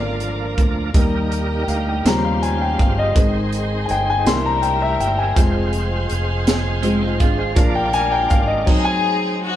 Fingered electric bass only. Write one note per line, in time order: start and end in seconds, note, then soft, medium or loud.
0.00 0.54 G#1 medium
0.58 0.92 D2 medium
0.94 1.64 D#2 medium
1.68 2.02 D2 medium
2.05 2.75 D#2 medium
2.79 3.13 G1 medium
3.16 3.86 G#1 medium
3.90 4.24 G1 medium
4.26 4.96 C2 loud
5.00 5.34 G1 medium
5.37 6.06 F1 loud
6.10 7.21 F1 medium
7.21 7.54 G#1 medium
7.56 8.26 A#1 medium
8.31 8.64 G#1 medium